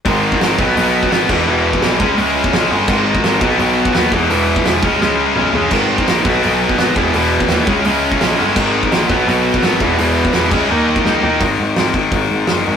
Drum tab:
CC |--------------x-|----------------|x---------------|----------------|
HH |o---o---o---o---|----o---o---o---|----o---o---o---|o---o-----------|
SD |----o-------o---|----o-------o---|----o-------o---|----o---o-------|
T2 |----------------|----------------|----------------|------------o---|
FT |----------------|----------------|----------------|--------------o-|
BD |o--o--o----o--o-|---o--o----o----|o--o--o----o--o-|---o--o---------|

CC |x---------------|----------------|x---------------|------x---------|
HH |----o---o---o---|o---o---o---o---|----o---o---o---|o---o-----------|
SD |----o-------o---|----o-------o---|----o-------o---|----o-------o---|
T2 |----------------|----------------|----------------|----------------|
FT |----------------|----------------|----------------|--------------o-|
BD |o--o--o----o--o-|---o--o----o----|o--o--o----o--o-|---o--o----o----|

CC |----------------|
HH |o---o---o---o---|
SD |----o-------o---|
T2 |----------------|
FT |----------------|
BD |o-----o-o-------|